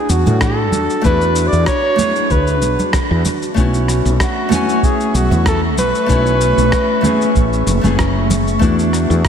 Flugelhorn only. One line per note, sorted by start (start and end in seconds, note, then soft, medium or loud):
0.00 0.12 G#4 medium
0.10 0.43 F#4 medium
0.42 1.04 A4 medium
1.05 1.49 B4 loud
1.47 1.67 D5 loud
1.68 2.33 C#5 loud
2.31 2.94 B4 medium
4.22 4.86 F#4 medium
4.85 5.17 G#4 medium
5.16 5.47 F#4 medium
5.47 5.61 A4 loud
5.79 8.27 B4 loud